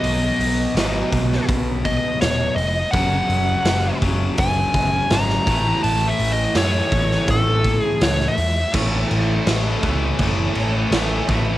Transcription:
Already playing: overdriven electric guitar B2 F#3 B3, lead electric guitar D#5
0.03 picked electric bass B1, open hi-hat
0.39 picked electric bass B1, open hi-hat
0.75 picked electric bass G#1, overdriven electric guitar B2 F#3, snare, open hi-hat
0.79 overdriven electric guitar B3
1.12 picked electric bass B1, kick, open hi-hat
1.32 snare
1.49 picked electric bass B1, kick, open hi-hat
1.85 lead electric guitar D#5, kick, open hi-hat
2.21 picked electric bass D#1, lead electric guitar C#5, snare, open hi-hat
2.56 picked electric bass F1, lead electric guitar D#5, open hi-hat
2.91 picked electric bass F#1, overdriven electric guitar F#2, lead electric guitar F#5, kick, open hi-hat
2.95 overdriven electric guitar C#3 F#3
3.29 picked electric bass F#1, open hi-hat
3.65 picked electric bass F#1, snare, open hi-hat
4.01 picked electric bass F#1, overdriven electric guitar C#3 F#3, kick, open hi-hat
4.05 overdriven electric guitar F#2
4.38 picked electric bass F#1, lead electric guitar G#5, kick, open hi-hat
4.74 picked electric bass F#1, kick, open hi-hat
5.10 picked electric bass G#1, lead electric guitar A#5, snare, open hi-hat
5.30 snare
5.46 picked electric bass A1, overdriven electric guitar A2 E3 A3, kick, open hi-hat
5.83 picked electric bass A1, lead electric guitar A5, open hi-hat
6.08 lead electric guitar E5
6.19 picked electric bass A1, open hi-hat
6.32 lead electric guitar D#5
6.54 picked electric bass F#2, overdriven electric guitar A2 E3, lead electric guitar C#5, snare, open hi-hat
6.58 overdriven electric guitar A3
6.92 picked electric bass A1, kick, open hi-hat
7.11 snare
7.28 picked electric bass A1, lead electric guitar A4, kick, open hi-hat
7.64 kick, open hi-hat
7.82 lead electric guitar G#4
8.01 picked electric bass C#2, lead electric guitar C#5, snare, open hi-hat
8.20 snare
8.28 lead electric guitar E5
8.38 picked electric bass E2, open hi-hat
8.74 picked electric bass A1, overdriven electric guitar A2 E3 A3, kick, crash
9.11 picked electric bass A1, crash
9.47 picked electric bass A1, overdriven electric guitar A2 E3 A3, snare, crash
9.83 picked electric bass C#2, overdriven electric guitar A2 E3 A3, kick, crash
10.19 picked electric bass F#1, overdriven electric guitar A2 E3 A3, kick, crash
10.55 picked electric bass A1, crash
10.91 picked electric bass A1, overdriven electric guitar A2 E3 A3, snare, crash
11.28 picked electric bass A1, overdriven electric guitar A2 E3 A3, kick, crash

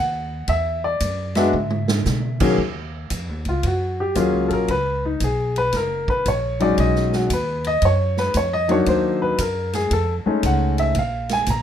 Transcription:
Already playing: upright bass D#2, upright piano F#5
0.48 upright bass E2, upright piano E5, kick, ride
0.84 upright piano D5
1.00 upright bass F#2, kick, hi-hat pedal, ride
1.35 upright piano G#3 B3 D4 F#4 E5, snare, ride
1.53 upright bass G#2, mid tom
1.70 mid tom
1.88 snare
2.05 upright bass B2, snare, hi-hat pedal
2.40 upright piano D#2 F#3 A#3 C#4 G#4, kick, crash
2.58 upright bass D#2, kick
3.10 upright bass F2, kick, hi-hat pedal, ride
3.29 upright bass D#2
3.45 upright bass C#2, upright piano F4, ride
3.63 upright bass F#2, upright piano F#4, kick, ride
4.00 upright piano G4
4.15 upright bass D#2, upright piano F#3 A#3 C#4 F4 G#4, kick, hi-hat pedal, ride
4.33 upright bass C#2
4.48 upright bass A#1, upright piano A4, ride
4.53 upright piano A#4
4.68 upright bass C#2, upright piano B4, kick, ride
5.05 upright piano D#4
5.20 upright bass B1, upright piano G#4, kick, hi-hat pedal, ride
5.56 upright piano B4, ride
5.73 upright bass F#1, upright piano A#4, kick, snare, ride
6.08 upright piano B4, kick
6.26 upright bass A#1, upright piano C#5, kick, hi-hat pedal, ride
6.60 upright piano F#3 G#3 C#4 D#4 D5, ride
6.78 upright bass B1, upright piano D#5, kick, ride
6.96 snare
7.13 upright piano F#4, snare
7.30 upright bass D#2, upright piano B4, kick, hi-hat pedal, ride
7.64 upright piano D#5, ride
7.82 upright bass F#2, upright piano C#5, kick, ride
8.17 upright piano B4, snare
8.34 upright bass F2, upright piano C#5, kick, hi-hat pedal, ride
8.53 upright piano D#5
8.68 upright piano F#3 A#3 D4 D#4 C#5, ride
8.86 upright bass D#2, upright piano C5, kick, ride
9.22 upright piano B4
9.38 upright bass F#2, upright piano A#4, kick, hi-hat pedal, ride
9.73 upright piano G#4, snare, ride
9.91 upright bass F2, upright piano A4, kick, ride
10.26 upright piano G#3 A3 C#4 D#4, muted upright bass stroke
10.43 upright bass C#2, upright piano F#5, kick, hi-hat pedal, ride
10.78 upright piano E5, ride
10.95 upright bass A#1, upright piano F5, kick, ride
11.29 upright piano G#5, snare, ride
11.46 upright bass A#1, upright piano A#5, kick, hi-hat pedal, ride

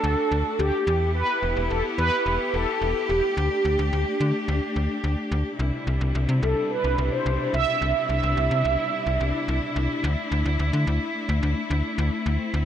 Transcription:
Already playing: string section A3 D4 F#4, analog polysynth A4
0.04 fm bass D2
0.32 fm bass D2
0.59 fm bass D2, analog polysynth G4
0.87 fm bass E2, string section B3 E4 G4
1.15 analog polysynth B4
1.43 fm bass E1
1.57 fm bass E1
1.70 fm bass E1, analog polysynth A4
1.98 fm bass E2, analog polysynth B4
2.26 fm bass E1
2.54 fm bass E1, analog polysynth A4
2.82 fm bass E1
3.09 fm bass E1, analog polysynth G4
3.37 fm bass D2, string section A3 D4
3.65 fm bass D2
3.79 fm bass D2
3.93 fm bass D2
4.20 fm bass D3
4.48 fm bass D2
4.76 fm bass D2
5.04 fm bass D2
5.32 fm bass D2
5.59 fm bass C2, string section B2 C3 G3 D4 E4
5.87 fm bass C2
6.01 fm bass C2
6.15 fm bass C2
6.29 fm bass C3
6.43 fm bass C2, analog polysynth A4
6.71 analog polysynth B4
6.84 fm bass C2
6.98 fm bass C2
7.12 analog polysynth C5
7.26 fm bass C2
7.54 fm bass C2, analog polysynth E5
7.82 fm bass C2
8.09 fm bass C2, analog polysynth E5
8.23 fm bass C2
8.37 fm bass C2
8.51 fm bass C3
8.65 fm bass C2
9.06 fm bass C2
9.20 fm bass C2
9.48 fm bass C2
9.76 fm bass C2
10.04 fm bass D2, string section A3
10.32 fm bass D2
10.45 fm bass D2
10.59 fm bass D2
10.73 fm bass D3
10.87 fm bass D2
11.29 fm bass D2
11.43 fm bass D2
11.70 fm bass D2
11.98 fm bass D2
12.26 fm bass D2, string section C4
12.54 fm bass D2

